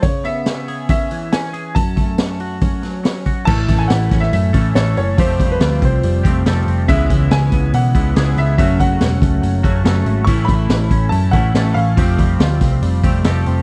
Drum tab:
CC |----------------|----------------|x---------------|----------------|
HH |o-o-o-o-o-o-o-o-|o-o-o-o-o-o-o-o-|--o-o-o-o-o-o-o-|o-o-o-o-o-o-o-o-|
SD |----o-------o---|----o-----o-o---|----o-oo----o---|----o-------o---|
BD |o-------o-------|o-o-----o-----o-|o-o---o---o-----|o-o---o---o-----|

CC |----------------|----------------|----------------|----------------|
HH |o-o-o-o-o-o-o-o-|o-o-o-o-o-o-o-o-|o-o-o-o-o-o-o-o-|o-o-o-o-o-o-o-o-|
SD |----o-------o---|----o-------o---|----o-------o---|----o-o-----o---|
BD |o-o---o---o-----|o-o---o---o-----|o-o---o---o-----|o-o---o---o-----|